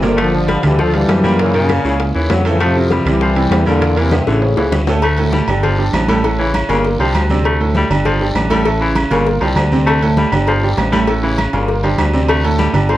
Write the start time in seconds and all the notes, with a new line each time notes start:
Already playing: G1
0.02 A#2 A#3 A#4, high bongo, low timbale, short guiro
0.07 D3
0.17 D3 A3, high bongo, high conga, high timbale, long guiro, claves
0.21 F3
0.33 D3 D4 F4, high conga
0.48 G3, high bongo, high conga, high timbale, low timbale, short guiro
0.63 D2 D3 E3 G3 D4 F4, high bongo, high conga, low conga, high timbale, short guiro, claves
0.78 F3 A3, high bongo, high conga, low conga, long guiro
0.94 D3 E3 G3 D4 F5, high bongo, high conga, high timbale
1.08 F#2, high bongo, low bongo, high conga, high timbale, low timbale, short guiro, claves
1.23 A#2 G3 A#3 A#4, high bongo, high conga, short guiro
1.39 A#2 C#3 E3 A#3 A#4, high bongo, high conga, high timbale, long guiro
1.54 A#2 C#3 D#3 A#3 A#4, high conga, high timbale
1.69 high bongo, high conga, high timbale, low timbale, short guiro, claves
1.84 C#2 C#3 C#4 E4, high bongo, high conga, short guiro
2.00 high bongo, high conga, high timbale, long guiro
2.15 D#2 C#3 E3 C#4 E4, high bongo, high conga
2.30 F2 C#3 F#3, high bongo, low bongo, high conga, high timbale, low timbale, short guiro, claves
2.45 A2 C#3 E3 A3 A4, high bongo, high timbale, short guiro
2.60 C3 F3 A3, high bongo, high conga, high timbale, long guiro, claves
2.76 C3 C4 E4, high conga
2.91 G3, high bongo, high conga, high timbale, low timbale, short guiro
3.05 C2 C3 E3 G3 C4 E4, high bongo, high conga, low conga, high timbale, short guiro, claves
3.21 F3, high bongo, long guiro
3.37 C3 C4 E4, high bongo, high conga, high timbale
3.51 E2, high bongo, low bongo, high conga, high timbale, low timbale, short guiro, claves
3.66 A#2 D3 G3 A#3 A#4, high bongo, high conga, short guiro
3.81 A#2 A#3 A#4, high bongo, high conga, high timbale, long guiro
3.96 A#2 C3 E3 A#3 A#4, high conga, high timbale
4.11 G2 C3, high bongo, high conga, high timbale, short guiro, claves
4.27 A1 A2 C#3 D3 E3 C#4 E4, high bongo, high conga, short guiro
4.42 high conga, low timbale, long guiro
4.57 C#2 C#3 E3 C#4 E4, low bongo, high conga, low timbale
4.72 D2, low bongo, high conga, low timbale, short guiro, claves
4.87 A2 A3 A4, low bongo, low timbale, short guiro
5.02 A3, cowbell, high conga, low agogo, long guiro, claves
5.17 A2 A3 A4, high conga, low agogo
5.32 G3, cowbell, high conga, low timbale, short guiro
5.47 G1 D3 D4 G4, high conga, low conga, low agogo, short guiro, claves
5.63 F3, cowbell, high conga, low conga, low agogo, long guiro
5.78 D3 D4 G4, high conga
5.93 A1, cowbell, high conga, low timbale, low agogo, short guiro, claves
6.08 A2 G3 A3 A4, cowbell, high conga, low agogo, short guiro
6.24 A2 A3 A4, cowbell, high conga, low agogo, long guiro
6.38 C#3 E3 C#4 E4, high conga
6.54 cowbell, high conga, low timbale, low agogo, short guiro, claves
6.69 G1 A#2 C#3 A#3 A#4, cowbell, high conga, low agogo, short guiro
6.84 cowbell, high conga, long guiro
6.99 C2 D3 F3 D4 G4, high conga, low agogo
7.14 D2, cowbell, high conga, low timbale, low agogo, short guiro, claves
7.29 C3 C4 D4, high conga, short guiro
7.44 A3, cowbell, high conga, low agogo, long guiro, claves
7.60 A2 A3 A4, high conga, low agogo
7.74 G3, cowbell, high conga, low timbale, short guiro
7.90 G1 D3 D4 G4, high conga, low conga, low agogo, short guiro, claves
8.05 F3, cowbell, high conga, low conga, low agogo, long guiro
8.20 D3 D4 G4, high conga
8.35 A1, cowbell, high conga, low timbale, low agogo, short guiro, claves
8.50 A2 G3 A3 A4, cowbell, high conga, low agogo, short guiro
8.65 A2 A3 A4, cowbell, low agogo, long guiro
8.80 C#3 E3 C#4 E4, high conga
8.95 cowbell, high conga, low timbale, low agogo, short guiro, claves
9.10 G1 A#2 C#3 A#3 A#4, cowbell, high conga, low agogo, short guiro
9.27 cowbell, high conga, long guiro
9.41 C2 D3 F3 D4 G4, high conga, low agogo
9.56 D2, cowbell, high conga, low timbale, low agogo, short guiro, claves
9.72 C3 C4 D4, high conga, short guiro
9.86 A3, cowbell, low agogo, long guiro, claves
10.02 A2 A3 A4, high conga, low agogo
10.17 G3, cowbell, high conga, low timbale, short guiro
10.32 G1 D3 D4 G4, high conga, low conga, low agogo, short guiro, claves
10.47 F3, cowbell, high conga, low agogo, long guiro
10.63 D3 D4 G4, high conga
10.77 A1, cowbell, high conga, low timbale, low agogo, short guiro, claves
10.92 A2 G3 A3 A4, cowbell, high conga, low agogo, short guiro
11.07 A2 A3 A4, cowbell, high conga, low agogo, long guiro
11.23 C#3 E3 C#4 E4, high conga
11.38 cowbell, high conga, low timbale, low agogo, short guiro, claves
11.53 G1 A#2 C#3 A#3 A#4, cowbell, high conga, low agogo, short guiro
11.68 cowbell, high conga, long guiro
11.83 D3 F3 D4 G4, high conga, low agogo
11.98 D2, cowbell, high conga, low timbale, low agogo, short guiro, claves
12.13 C3 C4 D4, short guiro
12.29 A3, cowbell, high conga, low agogo, long guiro, claves
12.44 A2 A3 A4, high conga, low agogo
12.59 G3, cowbell, high conga, low timbale, short guiro
12.73 G1 D3 D4 G4, high conga, low conga, low agogo, short guiro, claves
12.89 F3, cowbell, high conga, low agogo, long guiro